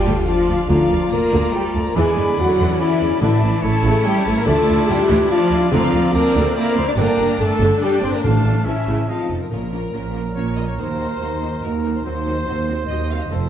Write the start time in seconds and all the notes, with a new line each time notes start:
Already playing: G3 F4 G4 D5 G5 A5
0.06 D2 D3
0.27 F3 D4 F4 D5 F5 A5
0.48 D2 F3
0.69 D2 D3 F3 F4 D5 F5 A#5
0.90 D2 A#3
1.11 D2 F3 A#3 F4 A#4 D5 A#5
1.32 D2 D3
1.53 G3 C4 G4 G5
1.74 D2 F3 A3 A4 A5
1.84 A#3 A#4 A#5
1.95 E2 D3 E3 G#3 B3 E4 G#4 D5 G#5 B5
2.16 E2 B3
2.38 E2 F#3 G#3 C#4 F#4 F#5
2.57 E2 E3
2.79 E3 E4 D5 E5 B5
3.01 E2 G#3
3.21 A1 A2 D3 E3 D4 E4 D5 E5 A5
3.42 A1 A3
3.63 A1 E3 A3 C#4 E4 A4 C#5 A5
3.83 A1 C#3
4.05 G3 G4 G5
4.26 A1 E3 A3 A4 A5
4.35 A#3 A#4 A#5
4.45 D2 D3 E3 A3 D4 F4 A4 D5 A5
4.68 D2 A3
4.87 D2 F3 G3 G4 G5
5.09 D2 E3
5.30 F3 F4 D5 F5 A5
5.50 D2 F3
5.71 D2 D3 F3 C4 F4 D5 F5 A#5
5.93 D2 A#3
6.13 D2 F3 A#3 C4 D4 A#4 D5 A#5
6.34 D2 D3
6.55 A#3 C4 E4 A#4 D5 A#5
6.76 D2 F3 C4 C5 C6
6.87 D4 D5 D6
6.96 G1 D3 A#3 D4 A#4 D5 G5 A#5
7.18 G1 G3
7.39 G1 D3 A3 A4 A5
7.60 G1 D3
7.80 G3 D4 G4 D5 G5
8.02 G1 D3 C4 C5 C6
8.13 A#3 A#4 A#5
8.23 A1 A2 D3 A3 D4 A4 F5 A5
8.44 A1 F3
8.65 A1 E3 C#4 E4 E5 A5
8.87 A1 C#3
9.07 F3 A3 C4 D#4 F4 D#5 F5 A5
9.30 F1 F3 A4
9.42 A#4
9.51 A#1 A#2 F3 A#3 C#4 F4 A#4
9.72 A#3 C#4 F4 A#4
9.93 A#1 A#2 A#3 C#4 F4 A#4
10.15 A#3 C#4 F4 A#4
10.36 A#1 A#2 A#3 C#4 F4 A#4 C#5
10.57 A#3 C#4 F4 A#4 D#5
10.68 C#5
10.78 D#2 F#3 A#3 D#4 F#4 A#4 C5
11.00 A#3 D#4 F#4 A#4
11.21 D#2 A#3 D#4 F#4 A#4
11.43 A#3 D#4 F#4 A#4
11.63 D#2 A#3 D#4 F#4 A#4
11.83 A#3 D#4 F#4 A#4
11.95 C5
12.04 D#2 F#3 C4 F#4 C5
12.25 F#3 C4 F#4 C5
12.47 D#2 F#3 C4 F#4 C5
12.68 F#3 C4 F#4 C5
12.88 D#2 F#3 C4 F#4 C5 D#5
13.10 F#3 C4 F#4 C5 F5
13.21 D#5
13.30 F1 F2 F3 C4 F4 A4 C5